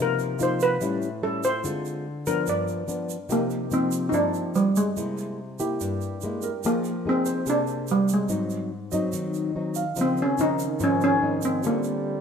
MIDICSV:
0, 0, Header, 1, 6, 480
1, 0, Start_track
1, 0, Key_signature, -3, "minor"
1, 0, Tempo, 416464
1, 1882, Time_signature, 4, 2, 24, 8
1, 14068, End_track
2, 0, Start_track
2, 0, Title_t, "Grand piano"
2, 0, Program_c, 0, 0
2, 191, Control_c, 0, 64, 127
2, 448, Note_on_c, 0, 65, 47
2, 937, Control_c, 0, 64, 0
2, 1119, Note_off_c, 0, 65, 0
2, 3808, Note_on_c, 0, 67, 48
2, 4012, Control_c, 0, 64, 127
2, 5298, Note_off_c, 0, 67, 0
2, 5738, Control_c, 0, 64, 0
2, 5919, Control_c, 0, 64, 127
2, 6450, Note_on_c, 0, 67, 51
2, 7415, Note_on_c, 0, 70, 47
2, 7656, Control_c, 0, 64, 0
2, 7839, Note_off_c, 0, 67, 0
2, 7845, Control_c, 0, 64, 127
2, 7855, Note_off_c, 0, 70, 0
2, 8364, Note_on_c, 0, 72, 53
2, 9576, Control_c, 0, 64, 0
2, 9756, Note_off_c, 0, 72, 0
2, 9807, Control_c, 0, 64, 127
2, 10277, Note_on_c, 0, 75, 53
2, 11250, Note_on_c, 0, 77, 43
2, 11494, Control_c, 0, 64, 0
2, 11672, Note_off_c, 0, 75, 0
2, 11691, Note_off_c, 0, 77, 0
2, 11730, Control_c, 0, 64, 127
2, 12687, Note_on_c, 0, 72, 38
2, 13412, Control_c, 0, 64, 0
2, 13597, Note_off_c, 0, 72, 0
2, 14068, End_track
3, 0, Start_track
3, 0, Title_t, "Steel pan"
3, 0, Program_c, 1, 114
3, 23, Note_on_c, 1, 70, 83
3, 486, Note_off_c, 1, 70, 0
3, 493, Note_on_c, 1, 72, 82
3, 714, Note_off_c, 1, 72, 0
3, 722, Note_on_c, 1, 71, 85
3, 1421, Note_on_c, 1, 69, 76
3, 1443, Note_off_c, 1, 71, 0
3, 1659, Note_off_c, 1, 69, 0
3, 1668, Note_on_c, 1, 72, 82
3, 2616, Note_on_c, 1, 70, 77
3, 2643, Note_off_c, 1, 72, 0
3, 2856, Note_off_c, 1, 70, 0
3, 2875, Note_on_c, 1, 74, 77
3, 3532, Note_off_c, 1, 74, 0
3, 3828, Note_on_c, 1, 58, 87
3, 4263, Note_off_c, 1, 58, 0
3, 4304, Note_on_c, 1, 60, 81
3, 4704, Note_off_c, 1, 60, 0
3, 4716, Note_on_c, 1, 63, 68
3, 4773, Note_on_c, 1, 62, 86
3, 4779, Note_off_c, 1, 63, 0
3, 5251, Note_on_c, 1, 55, 77
3, 5261, Note_off_c, 1, 62, 0
3, 5493, Note_off_c, 1, 55, 0
3, 5499, Note_on_c, 1, 56, 67
3, 6164, Note_off_c, 1, 56, 0
3, 7678, Note_on_c, 1, 58, 89
3, 8153, Note_off_c, 1, 58, 0
3, 8171, Note_on_c, 1, 60, 89
3, 8639, Note_off_c, 1, 60, 0
3, 8640, Note_on_c, 1, 62, 86
3, 9114, Note_off_c, 1, 62, 0
3, 9122, Note_on_c, 1, 55, 77
3, 9348, Note_off_c, 1, 55, 0
3, 9376, Note_on_c, 1, 56, 67
3, 10022, Note_off_c, 1, 56, 0
3, 11538, Note_on_c, 1, 60, 90
3, 11755, Note_off_c, 1, 60, 0
3, 11781, Note_on_c, 1, 61, 79
3, 11995, Note_on_c, 1, 63, 92
3, 11997, Note_off_c, 1, 61, 0
3, 12471, Note_off_c, 1, 63, 0
3, 12490, Note_on_c, 1, 61, 83
3, 12711, Note_off_c, 1, 61, 0
3, 12723, Note_on_c, 1, 61, 87
3, 13195, Note_off_c, 1, 61, 0
3, 13197, Note_on_c, 1, 60, 76
3, 13425, Note_off_c, 1, 60, 0
3, 13446, Note_on_c, 1, 58, 76
3, 14068, Note_off_c, 1, 58, 0
3, 14068, End_track
4, 0, Start_track
4, 0, Title_t, "Nylon-string guitar"
4, 0, Program_c, 2, 24
4, 0, Note_on_c, 2, 48, 56
4, 0, Note_on_c, 2, 53, 47
4, 0, Note_on_c, 2, 58, 43
4, 0, Note_on_c, 2, 63, 53
4, 403, Note_off_c, 2, 53, 0
4, 407, Note_off_c, 2, 58, 0
4, 408, Note_off_c, 2, 63, 0
4, 457, Note_on_c, 2, 53, 48
4, 464, Note_on_c, 2, 58, 44
4, 466, Note_on_c, 2, 63, 51
4, 892, Note_off_c, 2, 53, 0
4, 893, Note_off_c, 2, 58, 0
4, 896, Note_off_c, 2, 63, 0
4, 899, Note_off_c, 2, 48, 0
4, 932, Note_on_c, 2, 45, 67
4, 939, Note_on_c, 2, 55, 54
4, 939, Note_on_c, 2, 61, 56
4, 947, Note_on_c, 2, 64, 58
4, 1238, Note_off_c, 2, 55, 0
4, 1241, Note_off_c, 2, 61, 0
4, 1241, Note_off_c, 2, 64, 0
4, 1411, Note_on_c, 2, 55, 47
4, 1417, Note_on_c, 2, 61, 49
4, 1423, Note_on_c, 2, 64, 51
4, 1716, Note_off_c, 2, 55, 0
4, 1719, Note_off_c, 2, 61, 0
4, 1722, Note_off_c, 2, 64, 0
4, 1864, Note_off_c, 2, 45, 0
4, 1888, Note_on_c, 2, 56, 43
4, 1893, Note_on_c, 2, 50, 56
4, 1899, Note_on_c, 2, 60, 44
4, 1903, Note_on_c, 2, 65, 51
4, 2362, Note_off_c, 2, 56, 0
4, 2366, Note_off_c, 2, 60, 0
4, 2370, Note_off_c, 2, 65, 0
4, 2617, Note_on_c, 2, 53, 62
4, 2620, Note_on_c, 2, 59, 59
4, 2627, Note_on_c, 2, 62, 68
4, 2824, Note_off_c, 2, 50, 0
4, 2849, Note_on_c, 2, 43, 57
4, 3292, Note_off_c, 2, 53, 0
4, 3292, Note_off_c, 2, 59, 0
4, 3294, Note_off_c, 2, 62, 0
4, 3313, Note_on_c, 2, 53, 46
4, 3320, Note_on_c, 2, 59, 49
4, 3327, Note_on_c, 2, 62, 54
4, 3640, Note_off_c, 2, 53, 0
4, 3644, Note_off_c, 2, 59, 0
4, 3646, Note_off_c, 2, 62, 0
4, 3781, Note_off_c, 2, 43, 0
4, 3792, Note_on_c, 2, 48, 55
4, 3793, Note_on_c, 2, 53, 47
4, 3799, Note_on_c, 2, 58, 44
4, 3800, Note_on_c, 2, 63, 52
4, 4237, Note_off_c, 2, 53, 0
4, 4241, Note_off_c, 2, 63, 0
4, 4242, Note_off_c, 2, 58, 0
4, 4280, Note_on_c, 2, 53, 51
4, 4282, Note_on_c, 2, 58, 48
4, 4292, Note_on_c, 2, 63, 49
4, 4723, Note_off_c, 2, 53, 0
4, 4723, Note_off_c, 2, 58, 0
4, 4728, Note_off_c, 2, 63, 0
4, 4733, Note_off_c, 2, 48, 0
4, 4747, Note_on_c, 2, 43, 60
4, 4749, Note_on_c, 2, 53, 52
4, 4751, Note_on_c, 2, 58, 55
4, 5400, Note_off_c, 2, 53, 0
4, 5400, Note_off_c, 2, 58, 0
4, 5691, Note_off_c, 2, 43, 0
4, 5727, Note_on_c, 2, 56, 47
4, 5731, Note_on_c, 2, 48, 59
4, 5737, Note_on_c, 2, 58, 43
4, 5740, Note_on_c, 2, 64, 50
4, 6201, Note_off_c, 2, 56, 0
4, 6205, Note_off_c, 2, 58, 0
4, 6208, Note_off_c, 2, 64, 0
4, 6450, Note_on_c, 2, 58, 62
4, 6458, Note_on_c, 2, 64, 68
4, 6662, Note_off_c, 2, 48, 0
4, 6694, Note_on_c, 2, 43, 67
4, 7127, Note_off_c, 2, 58, 0
4, 7131, Note_off_c, 2, 64, 0
4, 7184, Note_on_c, 2, 56, 46
4, 7193, Note_on_c, 2, 58, 52
4, 7197, Note_on_c, 2, 64, 54
4, 7483, Note_off_c, 2, 56, 0
4, 7484, Note_off_c, 2, 64, 0
4, 7485, Note_off_c, 2, 58, 0
4, 7623, Note_off_c, 2, 43, 0
4, 7659, Note_on_c, 2, 58, 45
4, 7662, Note_on_c, 2, 53, 58
4, 7668, Note_on_c, 2, 63, 42
4, 7676, Note_on_c, 2, 68, 48
4, 7959, Note_off_c, 2, 58, 0
4, 7962, Note_off_c, 2, 63, 0
4, 7964, Note_off_c, 2, 68, 0
4, 8131, Note_on_c, 2, 58, 46
4, 8141, Note_on_c, 2, 63, 52
4, 8146, Note_on_c, 2, 68, 56
4, 8567, Note_off_c, 2, 58, 0
4, 8573, Note_off_c, 2, 63, 0
4, 8575, Note_off_c, 2, 68, 0
4, 8589, Note_off_c, 2, 53, 0
4, 8598, Note_on_c, 2, 58, 52
4, 8603, Note_on_c, 2, 48, 62
4, 8606, Note_on_c, 2, 68, 54
4, 9244, Note_off_c, 2, 58, 0
4, 9247, Note_off_c, 2, 68, 0
4, 9538, Note_off_c, 2, 48, 0
4, 9554, Note_on_c, 2, 44, 54
4, 9556, Note_on_c, 2, 54, 41
4, 9561, Note_on_c, 2, 60, 44
4, 9562, Note_on_c, 2, 63, 48
4, 10035, Note_off_c, 2, 54, 0
4, 10036, Note_off_c, 2, 63, 0
4, 10037, Note_off_c, 2, 60, 0
4, 10285, Note_on_c, 2, 54, 64
4, 10298, Note_on_c, 2, 60, 56
4, 10300, Note_on_c, 2, 63, 67
4, 10493, Note_off_c, 2, 44, 0
4, 10525, Note_on_c, 2, 51, 63
4, 10966, Note_off_c, 2, 54, 0
4, 10968, Note_off_c, 2, 60, 0
4, 10971, Note_off_c, 2, 63, 0
4, 11012, Note_on_c, 2, 54, 47
4, 11017, Note_on_c, 2, 60, 47
4, 11019, Note_on_c, 2, 63, 51
4, 11329, Note_off_c, 2, 54, 0
4, 11330, Note_off_c, 2, 60, 0
4, 11332, Note_off_c, 2, 63, 0
4, 11458, Note_off_c, 2, 51, 0
4, 11481, Note_on_c, 2, 53, 46
4, 11486, Note_on_c, 2, 49, 55
4, 11487, Note_on_c, 2, 60, 47
4, 11491, Note_on_c, 2, 63, 55
4, 11789, Note_off_c, 2, 53, 0
4, 11792, Note_off_c, 2, 60, 0
4, 11795, Note_off_c, 2, 63, 0
4, 11967, Note_on_c, 2, 53, 44
4, 11978, Note_on_c, 2, 60, 47
4, 11980, Note_on_c, 2, 63, 48
4, 12274, Note_off_c, 2, 53, 0
4, 12276, Note_off_c, 2, 60, 0
4, 12279, Note_off_c, 2, 63, 0
4, 12419, Note_off_c, 2, 49, 0
4, 12447, Note_on_c, 2, 44, 61
4, 12450, Note_on_c, 2, 53, 51
4, 12454, Note_on_c, 2, 60, 52
4, 12462, Note_on_c, 2, 63, 57
4, 12885, Note_off_c, 2, 53, 0
4, 12888, Note_off_c, 2, 60, 0
4, 12892, Note_off_c, 2, 63, 0
4, 12924, Note_on_c, 2, 53, 55
4, 12934, Note_on_c, 2, 60, 49
4, 12939, Note_on_c, 2, 63, 52
4, 13363, Note_off_c, 2, 53, 0
4, 13369, Note_off_c, 2, 60, 0
4, 13370, Note_off_c, 2, 63, 0
4, 13380, Note_off_c, 2, 44, 0
4, 13415, Note_on_c, 2, 50, 53
4, 13419, Note_on_c, 2, 60, 45
4, 13426, Note_on_c, 2, 65, 51
4, 14068, Note_off_c, 2, 50, 0
4, 14068, Note_off_c, 2, 60, 0
4, 14068, Note_off_c, 2, 65, 0
4, 14068, End_track
5, 0, Start_track
5, 0, Title_t, "Trombone"
5, 0, Program_c, 3, 57
5, 11474, Note_on_c, 3, 51, 85
5, 13397, Note_on_c, 3, 55, 96
5, 13415, Note_off_c, 3, 51, 0
5, 14068, Note_off_c, 3, 55, 0
5, 14068, End_track
6, 0, Start_track
6, 0, Title_t, "Drums"
6, 219, Note_on_c, 9, 82, 26
6, 335, Note_off_c, 9, 82, 0
6, 453, Note_on_c, 9, 82, 50
6, 568, Note_off_c, 9, 82, 0
6, 693, Note_on_c, 9, 82, 57
6, 809, Note_off_c, 9, 82, 0
6, 935, Note_on_c, 9, 82, 55
6, 1050, Note_off_c, 9, 82, 0
6, 1176, Note_on_c, 9, 82, 23
6, 1291, Note_off_c, 9, 82, 0
6, 1654, Note_on_c, 9, 82, 55
6, 1769, Note_off_c, 9, 82, 0
6, 1894, Note_on_c, 9, 82, 58
6, 2009, Note_off_c, 9, 82, 0
6, 2136, Note_on_c, 9, 82, 23
6, 2251, Note_off_c, 9, 82, 0
6, 2610, Note_on_c, 9, 82, 56
6, 2725, Note_off_c, 9, 82, 0
6, 2843, Note_on_c, 9, 82, 58
6, 2958, Note_off_c, 9, 82, 0
6, 3087, Note_on_c, 9, 82, 21
6, 3202, Note_off_c, 9, 82, 0
6, 3323, Note_on_c, 9, 82, 45
6, 3438, Note_off_c, 9, 82, 0
6, 3566, Note_on_c, 9, 82, 58
6, 3682, Note_off_c, 9, 82, 0
6, 3801, Note_on_c, 9, 82, 62
6, 3917, Note_off_c, 9, 82, 0
6, 4036, Note_on_c, 9, 82, 24
6, 4152, Note_off_c, 9, 82, 0
6, 4278, Note_on_c, 9, 82, 47
6, 4393, Note_off_c, 9, 82, 0
6, 4513, Note_on_c, 9, 82, 60
6, 4628, Note_off_c, 9, 82, 0
6, 4759, Note_on_c, 9, 82, 53
6, 4874, Note_off_c, 9, 82, 0
6, 5000, Note_on_c, 9, 82, 23
6, 5115, Note_off_c, 9, 82, 0
6, 5243, Note_on_c, 9, 82, 44
6, 5358, Note_off_c, 9, 82, 0
6, 5485, Note_on_c, 9, 82, 64
6, 5600, Note_off_c, 9, 82, 0
6, 5727, Note_on_c, 9, 82, 55
6, 5843, Note_off_c, 9, 82, 0
6, 5967, Note_on_c, 9, 82, 26
6, 6082, Note_off_c, 9, 82, 0
6, 6446, Note_on_c, 9, 82, 62
6, 6561, Note_off_c, 9, 82, 0
6, 6690, Note_on_c, 9, 82, 63
6, 6806, Note_off_c, 9, 82, 0
6, 6930, Note_on_c, 9, 82, 23
6, 7045, Note_off_c, 9, 82, 0
6, 7159, Note_on_c, 9, 82, 46
6, 7274, Note_off_c, 9, 82, 0
6, 7399, Note_on_c, 9, 82, 55
6, 7514, Note_off_c, 9, 82, 0
6, 7647, Note_on_c, 9, 82, 54
6, 7762, Note_off_c, 9, 82, 0
6, 7888, Note_on_c, 9, 82, 25
6, 8003, Note_off_c, 9, 82, 0
6, 8364, Note_on_c, 9, 82, 62
6, 8479, Note_off_c, 9, 82, 0
6, 8602, Note_on_c, 9, 82, 55
6, 8717, Note_off_c, 9, 82, 0
6, 8840, Note_on_c, 9, 82, 21
6, 8955, Note_off_c, 9, 82, 0
6, 9076, Note_on_c, 9, 82, 47
6, 9192, Note_off_c, 9, 82, 0
6, 9317, Note_on_c, 9, 82, 59
6, 9433, Note_off_c, 9, 82, 0
6, 9553, Note_on_c, 9, 82, 55
6, 9668, Note_off_c, 9, 82, 0
6, 9797, Note_on_c, 9, 82, 26
6, 9912, Note_off_c, 9, 82, 0
6, 10279, Note_on_c, 9, 82, 58
6, 10394, Note_off_c, 9, 82, 0
6, 10518, Note_on_c, 9, 82, 56
6, 10633, Note_off_c, 9, 82, 0
6, 10762, Note_on_c, 9, 82, 22
6, 10877, Note_off_c, 9, 82, 0
6, 11234, Note_on_c, 9, 82, 60
6, 11350, Note_off_c, 9, 82, 0
6, 11478, Note_on_c, 9, 82, 62
6, 11593, Note_off_c, 9, 82, 0
6, 11722, Note_on_c, 9, 82, 23
6, 11838, Note_off_c, 9, 82, 0
6, 11964, Note_on_c, 9, 82, 47
6, 12080, Note_off_c, 9, 82, 0
6, 12207, Note_on_c, 9, 82, 58
6, 12322, Note_off_c, 9, 82, 0
6, 12444, Note_on_c, 9, 82, 58
6, 12559, Note_off_c, 9, 82, 0
6, 12689, Note_on_c, 9, 82, 22
6, 12804, Note_off_c, 9, 82, 0
6, 13160, Note_on_c, 9, 82, 58
6, 13276, Note_off_c, 9, 82, 0
6, 13408, Note_on_c, 9, 82, 58
6, 13523, Note_off_c, 9, 82, 0
6, 13640, Note_on_c, 9, 82, 25
6, 13755, Note_off_c, 9, 82, 0
6, 14068, End_track
0, 0, End_of_file